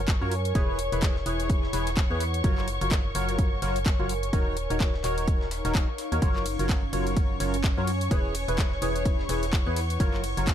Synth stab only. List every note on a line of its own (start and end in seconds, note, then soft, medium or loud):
0.22 0.35 F#3 medium
0.22 0.35 F4 medium
0.22 0.35 F#4 medium
0.22 0.35 A#4 medium
0.22 0.35 C#5 loud
0.55 0.79 E3 loud
0.55 0.79 E4 loud
0.55 0.79 G#4 medium
0.55 0.79 B4 medium
0.55 0.79 C#5 loud
0.92 1.16 E3 medium
0.92 1.16 E4 medium
0.92 1.16 G#4 medium
0.92 1.16 B4 medium
0.92 1.16 C#5 medium
1.26 1.71 E3 medium
1.26 1.71 E4 medium
1.26 1.71 G#4 medium
1.26 1.71 B4 medium
1.26 1.71 C#5 medium
1.73 1.89 E3 medium
1.73 1.89 E4 medium
1.73 1.89 G#4 medium
1.73 1.89 B4 medium
1.73 1.89 C#5 medium
2.11 2.24 E3 medium
2.11 2.24 E4 medium
2.11 2.24 G#4 medium
2.11 2.24 B4 medium
2.11 2.24 C#5 loud
2.44 2.67 F#3 loud
2.44 2.67 F4 medium
2.44 2.68 F#4 medium
2.44 2.67 A#4 medium
2.44 2.67 C#5 loud
2.81 3.05 F#3 medium
2.81 3.05 F4 medium
2.81 3.05 F#4 medium
2.81 3.05 A#4 medium
2.81 3.05 C#5 medium
3.15 3.60 F#3 medium
3.15 3.60 F4 medium
3.15 3.60 F#4 medium
3.15 3.60 A#4 medium
3.15 3.60 C#5 loud
3.62 3.78 F#3 medium
3.62 3.78 F4 medium
3.62 3.78 F#4 medium
3.62 3.78 A#4 medium
3.62 3.78 C#5 loud
3.99 4.13 F#3 loud
3.99 4.13 F4 medium
3.99 4.13 F#4 medium
3.99 4.13 A#4 medium
3.99 4.13 C#5 loud
4.33 4.56 D#3 loud
4.33 4.56 D#4 medium
4.33 4.56 F#4 medium
4.33 4.56 A#4 medium
4.33 4.56 C#5 loud
4.70 4.94 D#3 medium
4.70 4.94 D#4 medium
4.70 4.94 F#4 medium
4.70 4.94 A#4 medium
4.70 4.94 C#5 medium
5.04 5.49 D#3 medium
5.04 5.49 D#4 medium
5.04 5.49 F#4 medium
5.04 5.49 A#4 medium
5.04 5.49 C#5 loud
5.65 5.88 D#3 medium
5.65 5.88 D#4 medium
5.65 5.88 F#4 medium
5.65 5.88 A#4 medium
5.65 5.88 C#5 loud
6.12 6.21 D#4 medium
6.12 6.21 F#4 medium
6.12 6.21 A#4 medium
6.12 6.21 C#5 medium
6.22 6.45 F#3 loud
6.22 6.45 F4 medium
6.22 6.45 F#4 loud
6.22 6.45 A#4 medium
6.22 6.45 C#5 loud
6.59 6.83 F#3 medium
6.59 6.83 F4 medium
6.59 6.83 F#4 medium
6.59 6.83 A#4 medium
6.59 6.83 C#5 medium
6.93 7.38 F#3 medium
6.93 7.38 F4 medium
6.93 7.38 F#4 medium
6.93 7.38 A#4 medium
6.93 7.38 C#5 loud
7.40 7.56 F#3 medium
7.40 7.56 F4 medium
7.40 7.56 F#4 medium
7.40 7.56 A#4 medium
7.40 7.56 C#5 loud
7.77 7.91 F#3 loud
7.77 7.91 F4 medium
7.77 7.91 F#4 medium
7.77 7.91 A#4 medium
7.77 7.91 C#5 loud
8.11 8.34 E3 loud
8.11 8.34 E4 medium
8.11 8.34 G#4 loud
8.11 8.34 B4 medium
8.11 8.34 C#5 loud
8.48 8.72 E3 medium
8.48 8.72 E4 medium
8.48 8.72 G#4 medium
8.48 8.72 B4 medium
8.48 8.72 C#5 medium
8.82 9.27 E3 medium
8.82 9.27 E4 medium
8.82 9.27 G#4 medium
8.82 9.27 B4 medium
8.82 9.27 C#5 medium
9.29 9.45 E3 medium
9.29 9.45 E4 medium
9.29 9.45 G#4 medium
9.29 9.45 B4 medium
9.29 9.45 C#5 loud
9.66 9.80 E3 medium
9.66 9.80 E4 medium
9.66 9.80 G#4 medium
9.66 9.80 B4 medium
9.66 9.80 C#5 loud
10.00 10.23 F#3 loud
10.00 10.23 F4 medium
10.00 10.23 F#4 medium
10.00 10.23 A#4 medium
10.00 10.23 C#5 loud
10.37 10.54 F#3 medium
10.37 10.54 F4 medium
10.37 10.54 F#4 medium
10.37 10.54 A#4 medium
10.37 10.54 C#5 medium